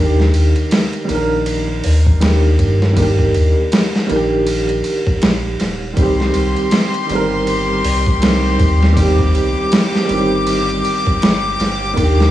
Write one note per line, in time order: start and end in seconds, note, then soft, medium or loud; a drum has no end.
0.00 0.31 D#2 loud
0.00 1.03 D#3 medium
0.00 1.06 A#3 medium
0.00 1.07 D4 medium
0.00 1.09 G4 loud
0.20 snare soft
0.34 0.54 D#2 medium
0.34 ride medium
0.56 ride soft
0.71 snare loud
0.71 ride medium
0.93 ride soft
1.05 2.16 D#3 medium
1.05 2.18 A#3 medium
1.09 1.81 A#1 medium
1.09 2.19 D4 medium
1.09 ride medium
1.14 2.21 A#4 medium
1.46 ride medium
1.84 2.57 D#2 loud
1.84 open hi-hat medium
2.06 kick medium
2.20 2.92 D#3 medium
2.20 2.93 A#3 medium
2.20 2.94 D4 medium
2.20 snare loud
2.20 ride medium
2.25 2.95 G4 medium
2.59 3.31 G2 loud
2.59 kick medium
2.59 ride medium
2.82 snare soft
2.93 4.04 D#3 medium
2.93 4.05 A#3 medium
2.93 kick loud
2.93 ride medium
2.99 4.07 D4 medium
2.99 4.08 G4 loud
3.19 kick medium
3.34 3.54 D#2 medium
3.34 ride medium
3.72 snare loud
3.72 ride medium
3.95 snare soft
4.07 4.82 A#1 medium
4.07 5.92 D#3 medium
4.07 5.93 A#3 medium
4.07 ride medium
4.12 5.95 D4 medium
4.12 5.96 G4 loud
4.47 ride medium
4.69 ride soft
4.84 ride medium
5.07 kick medium
5.22 5.56 A#1 medium
5.22 snare loud
5.22 ride medium
5.60 5.94 D#1 medium
5.60 snare soft
5.60 ride medium
5.93 7.04 D#3 medium
5.93 7.05 G3 medium
5.93 kick loud
5.93 ride medium
5.97 6.31 C2 medium
5.97 7.07 C4 medium
5.97 11.93 G4 medium
5.97 8.94 C6 medium
6.02 7.08 G4 medium
6.20 snare soft
6.34 6.54 C2 medium
6.34 ride medium
6.56 ride soft
6.71 snare loud
6.71 ride medium
6.94 ride soft
7.06 7.81 G1 medium
7.06 8.17 D#3 medium
7.06 8.18 G3 medium
7.06 ride medium
7.12 8.20 C4 medium
7.12 8.21 A#4 medium
7.47 ride medium
7.84 8.56 C2 loud
7.84 open hi-hat medium
8.06 kick medium
8.20 8.91 D#3 medium
8.20 8.93 G3 medium
8.20 8.94 C4 medium
8.20 snare loud
8.20 ride medium
8.25 8.95 G4 loud
8.59 9.32 D#2 loud
8.59 kick medium
8.59 ride medium
8.83 snare soft
8.92 10.04 D#3 medium
8.92 10.05 G3 medium
8.92 12.31 D6 medium
8.97 10.07 C4 medium
8.97 kick loud
8.97 ride medium
9.02 10.08 G4 loud
9.19 kick medium
9.34 9.54 C2 medium
9.34 ride medium
9.72 snare loud
9.72 ride medium
9.95 snare soft
10.05 11.91 D#3 loud
10.05 11.93 G3 medium
10.09 10.81 G1 medium
10.09 11.94 C4 medium
10.09 ride medium
10.14 11.96 G4 loud
10.47 ride medium
10.69 ride soft
10.85 ride medium
11.07 kick medium
11.22 11.56 G1 medium
11.22 snare loud
11.22 ride medium
11.60 11.93 G1 medium
11.60 snare medium
11.60 ride medium
11.94 12.31 D#2 medium
11.94 12.31 D#3 medium
11.94 12.31 A#3 medium
11.94 kick loud
11.94 ride medium
11.98 12.31 D4 medium
11.98 12.31 G4 medium
12.03 12.31 G4 loud
12.20 snare soft